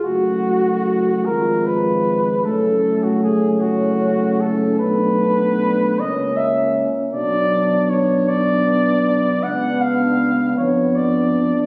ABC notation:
X:1
M:6/8
L:1/16
Q:3/8=52
K:F#m
V:1 name="Cornet"
F6 ^A2 _c4 | A3 F G2 F4 A2 | B6 ^d2 e3 z | d4 c2 d6 |
f2 ^e4 c2 d4 |]
V:2 name="French horn section"
F6 =F6 | C12 | D6 C6 | D12 |
D6 D6 |]
V:3 name="Euphonium"
A,6 _A,6 | A,12- | A,6 ^A,4 z2 | B,12 |
B,6 B,6 |]
V:4 name="Trombone"
z6 =F,6 | A,6 C6 | B,6 ^A,6 | F,4 z2 B,6- |
B,12 |]
V:5 name="Tuba" clef=bass
F,,,6 _A,,,6 | F,,,12 | B,,,6 C,,4 z2 | B,,,12 |
C,,6 ^E,,6 |]